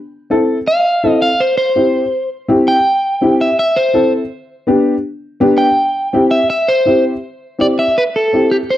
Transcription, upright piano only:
0, 0, Header, 1, 2, 480
1, 0, Start_track
1, 0, Key_signature, 0, "major"
1, 0, Tempo, 364078
1, 1855, Time_signature, 4, 2, 24, 8
1, 11569, End_track
2, 0, Start_track
2, 0, Title_t, "Upright piano"
2, 0, Program_c, 0, 0
2, 397, Note_on_c, 0, 60, 82
2, 405, Note_on_c, 0, 64, 79
2, 410, Note_on_c, 0, 69, 93
2, 742, Note_off_c, 0, 60, 0
2, 746, Note_off_c, 0, 64, 0
2, 748, Note_off_c, 0, 69, 0
2, 1366, Note_on_c, 0, 64, 68
2, 1367, Note_on_c, 0, 60, 72
2, 1368, Note_on_c, 0, 69, 80
2, 1707, Note_off_c, 0, 60, 0
2, 1707, Note_off_c, 0, 64, 0
2, 1708, Note_off_c, 0, 69, 0
2, 2314, Note_on_c, 0, 60, 75
2, 2324, Note_on_c, 0, 64, 65
2, 2327, Note_on_c, 0, 67, 77
2, 2661, Note_off_c, 0, 60, 0
2, 2666, Note_off_c, 0, 64, 0
2, 2667, Note_off_c, 0, 67, 0
2, 3276, Note_on_c, 0, 60, 91
2, 3277, Note_on_c, 0, 64, 84
2, 3289, Note_on_c, 0, 67, 94
2, 3622, Note_off_c, 0, 60, 0
2, 3622, Note_off_c, 0, 64, 0
2, 3628, Note_off_c, 0, 67, 0
2, 4237, Note_on_c, 0, 60, 85
2, 4244, Note_on_c, 0, 64, 83
2, 4254, Note_on_c, 0, 67, 92
2, 4582, Note_off_c, 0, 60, 0
2, 4586, Note_off_c, 0, 64, 0
2, 4591, Note_off_c, 0, 67, 0
2, 5188, Note_on_c, 0, 60, 81
2, 5197, Note_on_c, 0, 64, 72
2, 5199, Note_on_c, 0, 69, 83
2, 5538, Note_off_c, 0, 60, 0
2, 5543, Note_off_c, 0, 64, 0
2, 5543, Note_off_c, 0, 69, 0
2, 6155, Note_on_c, 0, 59, 83
2, 6165, Note_on_c, 0, 62, 84
2, 6170, Note_on_c, 0, 67, 98
2, 6501, Note_off_c, 0, 59, 0
2, 6506, Note_off_c, 0, 62, 0
2, 6509, Note_off_c, 0, 67, 0
2, 7123, Note_on_c, 0, 59, 91
2, 7131, Note_on_c, 0, 62, 85
2, 7132, Note_on_c, 0, 67, 106
2, 7465, Note_off_c, 0, 59, 0
2, 7469, Note_off_c, 0, 62, 0
2, 7469, Note_off_c, 0, 67, 0
2, 8085, Note_on_c, 0, 60, 89
2, 8092, Note_on_c, 0, 64, 81
2, 8100, Note_on_c, 0, 67, 96
2, 8426, Note_off_c, 0, 60, 0
2, 8429, Note_off_c, 0, 64, 0
2, 8433, Note_off_c, 0, 67, 0
2, 9039, Note_on_c, 0, 60, 72
2, 9049, Note_on_c, 0, 64, 73
2, 9054, Note_on_c, 0, 67, 79
2, 9383, Note_off_c, 0, 60, 0
2, 9387, Note_off_c, 0, 64, 0
2, 9390, Note_off_c, 0, 67, 0
2, 10001, Note_on_c, 0, 60, 75
2, 10007, Note_on_c, 0, 64, 61
2, 10008, Note_on_c, 0, 67, 76
2, 10343, Note_off_c, 0, 60, 0
2, 10346, Note_off_c, 0, 64, 0
2, 10347, Note_off_c, 0, 67, 0
2, 10981, Note_on_c, 0, 60, 73
2, 10985, Note_on_c, 0, 64, 71
2, 10993, Note_on_c, 0, 67, 80
2, 11314, Note_off_c, 0, 60, 0
2, 11316, Note_off_c, 0, 64, 0
2, 11320, Note_off_c, 0, 67, 0
2, 11569, End_track
0, 0, End_of_file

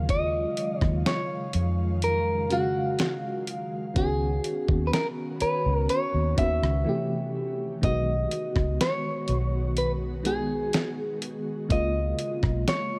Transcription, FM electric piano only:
0, 0, Header, 1, 2, 480
1, 0, Start_track
1, 0, Key_signature, -6, "minor"
1, 0, Tempo, 967742
1, 44, Time_signature, 4, 2, 24, 8
1, 6443, End_track
2, 0, Start_track
2, 0, Title_t, "FM electric piano"
2, 0, Program_c, 0, 5
2, 0, Control_c, 0, 64, 127
2, 0, Note_on_c, 0, 49, 77
2, 0, Note_on_c, 0, 54, 73
2, 0, Note_on_c, 0, 56, 76
2, 0, Note_on_c, 0, 65, 91
2, 568, Note_off_c, 0, 49, 0
2, 571, Note_off_c, 0, 54, 0
2, 575, Note_off_c, 0, 56, 0
2, 578, Note_off_c, 0, 65, 0
2, 1236, Note_on_c, 0, 49, 77
2, 1243, Note_on_c, 0, 66, 72
2, 1250, Note_on_c, 0, 56, 66
2, 1257, Note_on_c, 0, 77, 88
2, 1699, Note_off_c, 0, 49, 0
2, 1703, Note_off_c, 0, 66, 0
2, 1707, Note_off_c, 0, 56, 0
2, 1710, Note_off_c, 0, 77, 0
2, 1955, Note_on_c, 0, 51, 72
2, 1962, Note_on_c, 0, 59, 71
2, 1969, Note_on_c, 0, 61, 69
2, 1970, Control_c, 0, 64, 0
2, 1976, Note_on_c, 0, 66, 86
2, 2048, Control_c, 0, 64, 127
2, 2572, Note_off_c, 0, 51, 0
2, 2576, Note_off_c, 0, 59, 0
2, 2579, Note_off_c, 0, 61, 0
2, 2583, Note_off_c, 0, 66, 0
2, 3156, Note_on_c, 0, 51, 75
2, 3163, Note_on_c, 0, 59, 68
2, 3169, Note_on_c, 0, 61, 64
2, 3176, Note_on_c, 0, 66, 81
2, 3396, Note_on_c, 0, 52, 81
2, 3400, Note_off_c, 0, 51, 0
2, 3402, Note_on_c, 0, 57, 71
2, 3403, Note_off_c, 0, 59, 0
2, 3407, Note_off_c, 0, 61, 0
2, 3410, Note_off_c, 0, 66, 0
2, 3410, Control_c, 0, 64, 0
2, 3410, Note_on_c, 0, 48, 73
2, 3417, Note_on_c, 0, 67, 86
2, 3493, Control_c, 0, 64, 127
2, 3784, Note_off_c, 0, 52, 0
2, 3787, Note_off_c, 0, 57, 0
2, 3791, Note_off_c, 0, 48, 0
2, 3794, Note_off_c, 0, 67, 0
2, 3876, Note_on_c, 0, 51, 77
2, 3883, Note_on_c, 0, 56, 70
2, 3889, Control_c, 0, 64, 0
2, 3889, Note_on_c, 0, 59, 67
2, 3896, Note_on_c, 0, 66, 84
2, 3967, Control_c, 0, 64, 127
2, 4493, Note_off_c, 0, 51, 0
2, 4496, Note_off_c, 0, 56, 0
2, 4499, Note_off_c, 0, 59, 0
2, 4503, Note_off_c, 0, 66, 0
2, 5076, Note_on_c, 0, 51, 73
2, 5083, Note_on_c, 0, 56, 69
2, 5090, Note_on_c, 0, 59, 67
2, 5096, Note_on_c, 0, 68, 83
2, 5539, Note_off_c, 0, 51, 0
2, 5543, Note_off_c, 0, 56, 0
2, 5546, Note_off_c, 0, 59, 0
2, 5550, Note_off_c, 0, 68, 0
2, 5796, Note_on_c, 0, 49, 75
2, 5803, Note_on_c, 0, 56, 68
2, 5809, Control_c, 0, 64, 0
2, 5810, Note_on_c, 0, 58, 67
2, 5817, Note_on_c, 0, 65, 83
2, 5891, Control_c, 0, 64, 127
2, 6413, Note_off_c, 0, 49, 0
2, 6416, Note_off_c, 0, 56, 0
2, 6420, Note_off_c, 0, 58, 0
2, 6423, Note_off_c, 0, 65, 0
2, 6443, End_track
0, 0, End_of_file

